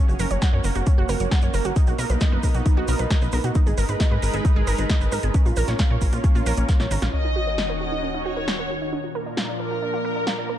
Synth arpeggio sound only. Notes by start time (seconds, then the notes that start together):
0.08 F#4
0.19 A#4
0.31 C#5
0.42 F#5
0.53 C#5
0.64 A#4
0.75 F#4
0.87 C#4
0.98 F#4
1.09 A#4
1.20 C#5
1.31 F#5
1.43 C#5
1.54 A#4
1.65 F#4
1.76 D#4
1.87 F#4
1.99 A#4
2.10 B4
2.21 D#5
2.32 B4
2.43 A#4
2.55 F#4
2.66 D#4
2.77 F#4
2.88 A#4
2.99 B4
3.11 D#5
3.22 B4
3.33 A#4
3.44 F#4
3.55 D#4
3.67 G#4
3.78 A#4
3.89 B4
4.00 D#5
4.11 B4
4.22 A#4
4.34 G#4
4.45 D#4
4.56 G#4
4.67 A#4
4.78 B4
4.90 D#5
5.01 B4
5.12 A#4
5.23 G#4
5.35 C#4
5.46 F4
5.57 A#4
5.68 C#5
5.79 F5
5.90 C#5
6.02 A#4
6.13 F4
6.24 C#4
6.35 F4
6.46 A#4
6.58 C#5
6.69 F5
6.80 C#5
6.91 A#4
7.02 F4
7.13 C#4
7.25 D#4
7.36 F#4
7.47 A#4
7.58 C#5
7.70 A#4
7.81 F#4
7.92 D#4
8.03 C#4
8.14 D#4
8.25 F#4
8.37 A#4
8.48 C#5
8.59 A#4
8.70 F#4
8.81 D#4
8.93 D4
9.04 F4
9.15 A#4
9.26 D5
9.37 F5
9.49 D5
9.60 A#4
9.71 F4
9.82 D4
9.94 F4
10.05 A#4
10.16 D5
10.27 F5
10.38 D5
10.49 A#4